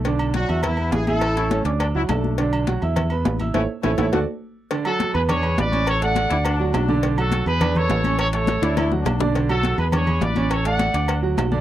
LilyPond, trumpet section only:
\new Staff \with { instrumentName = "Trumpet section" } { \time 4/4 \key a \major \tempo 4 = 207 r1 | r1 | r1 | r1 |
r8 <fis' a'>4 <gis' b'>8 <gis' cis''>4 <b' d''>4 | <a' cis''>8 <d'' fis''>2 r4. | r8 <fis' a'>4 <gis' b'>4 <a' cis''>4. | <a' cis''>8 <a' cis''>2 r4. |
r8 <fis' a'>4 <gis' b'>8 <gis' cis''>4 <b' d''>4 | <a' cis''>8 <d'' fis''>2 r4. | }